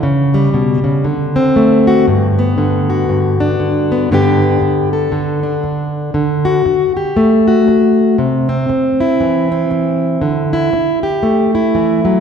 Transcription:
0.03 steel-string acoustic guitar C#3
0.34 steel-string acoustic guitar G3
0.54 steel-string acoustic guitar B2
0.84 steel-string acoustic guitar C#3
1.04 steel-string acoustic guitar D3
1.36 steel-string acoustic guitar C4
1.56 steel-string acoustic guitar A3
1.87 steel-string acoustic guitar F#4
2.07 steel-string acoustic guitar G2
2.39 steel-string acoustic guitar B3
2.58 steel-string acoustic guitar D3
2.90 steel-string acoustic guitar F#4
3.09 steel-string acoustic guitar G2
3.40 steel-string acoustic guitar D4
3.60 steel-string acoustic guitar D3
3.92 steel-string acoustic guitar B3
4.11 steel-string acoustic guitar G2 D3 B3 D4 G4
4.42 steel-string acoustic guitar D4
4.62 muted steel-string acoustic guitar stroke
4.93 steel-string acoustic guitar A4
5.12 steel-string acoustic guitar D3
5.43 steel-string acoustic guitar D4
5.64 muted steel-string acoustic guitar stroke
6.14 steel-string acoustic guitar D3
6.45 steel-string acoustic guitar F#4
6.66 muted steel-string acoustic guitar stroke
6.97 steel-string acoustic guitar G4
7.17 steel-string acoustic guitar A3
7.48 steel-string acoustic guitar F#4
7.68 muted steel-string acoustic guitar stroke
8.18 steel-string acoustic guitar C3
8.49 steel-string acoustic guitar C4
8.69 muted steel-string acoustic guitar stroke
9.00 steel-string acoustic guitar E4
9.20 steel-string acoustic guitar E3
9.52 steel-string acoustic guitar C4
9.71 muted steel-string acoustic guitar stroke
10.21 steel-string acoustic guitar D3
10.53 steel-string acoustic guitar E4
10.73 muted steel-string acoustic guitar stroke
11.03 steel-string acoustic guitar G4
11.23 steel-string acoustic guitar A3
11.55 steel-string acoustic guitar E4
11.75 steel-string acoustic guitar E3
12.05 steel-string acoustic guitar F#3

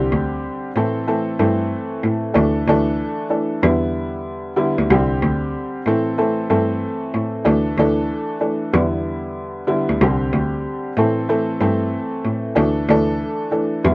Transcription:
Already playing: upright piano D3 G3 C4 G4
0.12 cello D2
0.76 cello A2, upright piano E3 A3 C4 A4
1.07 upright piano E3 A3 C4 A4
1.39 cello G2, upright piano E3 A3 C4 A4
2.04 cello A2
2.34 cello D2, upright piano E3 A3 D4 A4
2.68 cello D2, upright piano E3 A3 D4 A4
3.30 upright piano E3 A3 D4 A4
3.62 cello E2, upright piano D3 G3 B3 E4
4.56 upright piano D3 G3 B3 E4
4.79 cello D2
4.91 cello C2, upright piano D3 G3 C4 G4
5.22 cello D2
5.86 cello A2, upright piano E3 A3 C4 A4
6.18 upright piano E3 A3 C4 A4
6.50 cello G2, upright piano E3 A3 C4 A4
7.14 cello A2
7.44 cello D2, upright piano E3 A3 D4 A4
7.78 cello D2, upright piano E3 A3 D4 A4
8.41 upright piano E3 A3 D4 A4
8.73 cello E2, upright piano D3 G3 B3 E4
9.67 upright piano D3 G3 B3 E4
9.90 cello D2
10.02 cello C2, upright piano D3 G3 C4 G4
10.33 cello D2
10.97 cello A2, upright piano E3 A3 C4 A4
11.29 upright piano E3 A3 C4 A4
11.61 cello G2, upright piano E3 A3 C4 A4
12.25 cello A2
12.55 cello D2, upright piano E3 A3 D4 A4
12.89 cello D2, upright piano E3 A3 D4 A4
13.51 upright piano E3 A3 D4 A4
13.84 cello E2, upright piano D3 G3 B3 E4

